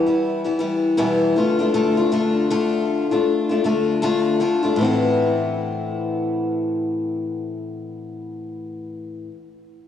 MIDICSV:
0, 0, Header, 1, 2, 480
1, 0, Start_track
1, 0, Key_signature, 0, "minor"
1, 0, Tempo, 762389
1, 1090, Time_signature, 4, 2, 24, 8
1, 6219, End_track
2, 0, Start_track
2, 0, Title_t, "Steel-string acoustic guitar"
2, 0, Program_c, 0, 25
2, 41, Note_on_c, 0, 64, 51
2, 48, Note_on_c, 0, 59, 43
2, 52, Note_on_c, 0, 55, 43
2, 55, Note_on_c, 0, 52, 38
2, 272, Note_off_c, 0, 64, 0
2, 276, Note_off_c, 0, 59, 0
2, 280, Note_off_c, 0, 55, 0
2, 280, Note_on_c, 0, 64, 46
2, 283, Note_on_c, 0, 59, 39
2, 285, Note_off_c, 0, 52, 0
2, 288, Note_on_c, 0, 55, 48
2, 293, Note_on_c, 0, 52, 39
2, 364, Note_off_c, 0, 52, 0
2, 370, Note_off_c, 0, 55, 0
2, 371, Note_on_c, 0, 52, 50
2, 373, Note_off_c, 0, 64, 0
2, 374, Note_off_c, 0, 59, 0
2, 378, Note_on_c, 0, 55, 54
2, 381, Note_on_c, 0, 59, 57
2, 384, Note_on_c, 0, 64, 59
2, 609, Note_off_c, 0, 52, 0
2, 612, Note_off_c, 0, 55, 0
2, 612, Note_off_c, 0, 59, 0
2, 612, Note_on_c, 0, 40, 76
2, 614, Note_off_c, 0, 64, 0
2, 615, Note_on_c, 0, 47, 78
2, 616, Note_on_c, 0, 52, 71
2, 619, Note_on_c, 0, 59, 77
2, 620, Note_on_c, 0, 55, 74
2, 621, Note_on_c, 0, 64, 79
2, 851, Note_off_c, 0, 40, 0
2, 852, Note_off_c, 0, 47, 0
2, 853, Note_off_c, 0, 52, 0
2, 855, Note_off_c, 0, 55, 0
2, 855, Note_off_c, 0, 59, 0
2, 856, Note_off_c, 0, 64, 0
2, 857, Note_on_c, 0, 50, 52
2, 861, Note_on_c, 0, 57, 51
2, 866, Note_on_c, 0, 62, 51
2, 868, Note_on_c, 0, 65, 56
2, 992, Note_off_c, 0, 65, 0
2, 998, Note_off_c, 0, 50, 0
2, 998, Note_off_c, 0, 62, 0
2, 999, Note_off_c, 0, 57, 0
2, 999, Note_on_c, 0, 65, 45
2, 1006, Note_on_c, 0, 62, 46
2, 1012, Note_on_c, 0, 57, 35
2, 1088, Note_off_c, 0, 57, 0
2, 1092, Note_off_c, 0, 65, 0
2, 1094, Note_off_c, 0, 62, 0
2, 1094, Note_on_c, 0, 50, 59
2, 1096, Note_on_c, 0, 57, 71
2, 1100, Note_on_c, 0, 65, 67
2, 1101, Note_on_c, 0, 62, 66
2, 1233, Note_off_c, 0, 65, 0
2, 1236, Note_off_c, 0, 50, 0
2, 1237, Note_off_c, 0, 57, 0
2, 1238, Note_off_c, 0, 62, 0
2, 1240, Note_on_c, 0, 65, 45
2, 1245, Note_on_c, 0, 62, 42
2, 1254, Note_on_c, 0, 57, 36
2, 1329, Note_off_c, 0, 57, 0
2, 1332, Note_on_c, 0, 50, 54
2, 1333, Note_off_c, 0, 65, 0
2, 1334, Note_off_c, 0, 62, 0
2, 1337, Note_on_c, 0, 57, 56
2, 1341, Note_on_c, 0, 62, 58
2, 1343, Note_on_c, 0, 65, 59
2, 1569, Note_off_c, 0, 50, 0
2, 1570, Note_off_c, 0, 57, 0
2, 1574, Note_off_c, 0, 65, 0
2, 1575, Note_off_c, 0, 62, 0
2, 1576, Note_on_c, 0, 50, 59
2, 1578, Note_on_c, 0, 57, 67
2, 1582, Note_on_c, 0, 65, 84
2, 1583, Note_on_c, 0, 62, 72
2, 1952, Note_off_c, 0, 65, 0
2, 1957, Note_off_c, 0, 50, 0
2, 1957, Note_off_c, 0, 57, 0
2, 1957, Note_off_c, 0, 62, 0
2, 1959, Note_on_c, 0, 65, 45
2, 1965, Note_on_c, 0, 62, 44
2, 1970, Note_on_c, 0, 57, 35
2, 2192, Note_off_c, 0, 65, 0
2, 2199, Note_off_c, 0, 62, 0
2, 2199, Note_on_c, 0, 65, 44
2, 2201, Note_off_c, 0, 57, 0
2, 2210, Note_on_c, 0, 62, 40
2, 2212, Note_on_c, 0, 57, 36
2, 2292, Note_off_c, 0, 65, 0
2, 2293, Note_off_c, 0, 57, 0
2, 2294, Note_on_c, 0, 50, 47
2, 2297, Note_off_c, 0, 62, 0
2, 2301, Note_on_c, 0, 57, 50
2, 2304, Note_on_c, 0, 62, 54
2, 2309, Note_on_c, 0, 65, 53
2, 2523, Note_off_c, 0, 50, 0
2, 2529, Note_off_c, 0, 57, 0
2, 2531, Note_off_c, 0, 62, 0
2, 2531, Note_on_c, 0, 50, 69
2, 2534, Note_off_c, 0, 65, 0
2, 2537, Note_on_c, 0, 57, 73
2, 2538, Note_on_c, 0, 62, 64
2, 2542, Note_on_c, 0, 65, 75
2, 2762, Note_off_c, 0, 50, 0
2, 2768, Note_off_c, 0, 57, 0
2, 2770, Note_on_c, 0, 50, 52
2, 2773, Note_off_c, 0, 62, 0
2, 2775, Note_off_c, 0, 65, 0
2, 2776, Note_on_c, 0, 57, 52
2, 2780, Note_on_c, 0, 62, 52
2, 2783, Note_on_c, 0, 65, 54
2, 2905, Note_off_c, 0, 65, 0
2, 2912, Note_on_c, 0, 65, 46
2, 2913, Note_off_c, 0, 50, 0
2, 2913, Note_off_c, 0, 62, 0
2, 2916, Note_off_c, 0, 57, 0
2, 2920, Note_on_c, 0, 62, 41
2, 2925, Note_on_c, 0, 57, 38
2, 2998, Note_on_c, 0, 45, 68
2, 3008, Note_off_c, 0, 65, 0
2, 3012, Note_off_c, 0, 62, 0
2, 3014, Note_on_c, 0, 52, 68
2, 3015, Note_off_c, 0, 57, 0
2, 3028, Note_on_c, 0, 60, 69
2, 3038, Note_on_c, 0, 59, 63
2, 3050, Note_on_c, 0, 64, 71
2, 5847, Note_off_c, 0, 45, 0
2, 5863, Note_off_c, 0, 52, 0
2, 5877, Note_off_c, 0, 60, 0
2, 5886, Note_off_c, 0, 59, 0
2, 5893, Note_off_c, 0, 64, 0
2, 6219, End_track
0, 0, End_of_file